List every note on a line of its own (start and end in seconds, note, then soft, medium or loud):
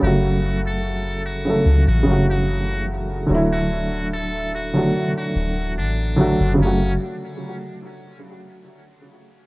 0.00 1.63 F#1 loud
0.00 1.40 C#3 medium
0.00 1.41 F#3 medium
0.00 1.43 A3 medium
0.00 0.59 F#4 loud
0.07 1.44 F#4 medium
0.67 1.21 A4 medium
1.26 1.82 F#4 loud
1.45 1.66 C#3 medium
1.45 1.67 F#3 medium
1.45 1.68 A3 medium
1.49 1.68 A4 medium
1.66 1.85 C#2 medium
1.88 2.05 A1 medium
1.88 2.25 F#4 medium
2.03 3.24 C#3 medium
2.03 3.25 F#3 medium
2.07 3.27 F#1 medium
2.07 3.27 A3 medium
2.12 3.28 F#4 medium
2.31 2.84 F#4 medium
3.26 4.91 D1 loud
3.26 4.69 D3 medium
3.26 4.70 F#3 medium
3.32 4.71 A3 medium
3.32 4.73 E4 loud
3.53 4.07 F#4 medium
4.14 4.51 A4 medium
4.56 5.11 F#4 loud
4.73 4.95 D3 medium
4.73 4.95 F#3 medium
4.73 4.96 A3 medium
4.78 4.97 F#4 medium
5.18 5.72 F#4 medium
5.36 5.79 D1 medium
5.77 6.36 A1 medium
5.77 6.53 D4 loud
6.16 6.54 D3 medium
6.16 6.55 F#3 medium
6.16 6.55 A3 medium
6.21 6.56 F#4 loud
6.40 6.57 F#1 medium
6.54 6.88 C#3 medium
6.54 6.90 F#3 medium
6.59 6.98 F#1 medium
6.59 6.92 A3 medium
6.59 6.92 C#4 medium
6.67 6.95 F#4 medium